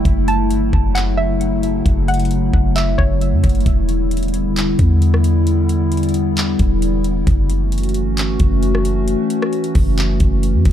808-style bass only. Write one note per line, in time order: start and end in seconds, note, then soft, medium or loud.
0.05 0.52 F#1 loud
0.50 0.72 G1 loud
0.73 1.82 F#1 loud
1.86 2.51 F#1 loud
2.54 2.97 F#1 loud
2.99 3.34 F#1 loud
3.32 3.43 F#2 loud
3.44 3.65 F#1 loud
3.66 4.75 E1 loud
4.79 6.55 E2 loud
6.60 7.24 E1 loud
7.27 8.07 F#1 loud
8.06 8.38 G1 loud
8.40 9.16 F#1 loud
9.75 10.19 F#1 loud
10.20 10.56 F#1 loud
10.54 10.65 F#2 loud
10.66 10.72 F#1 loud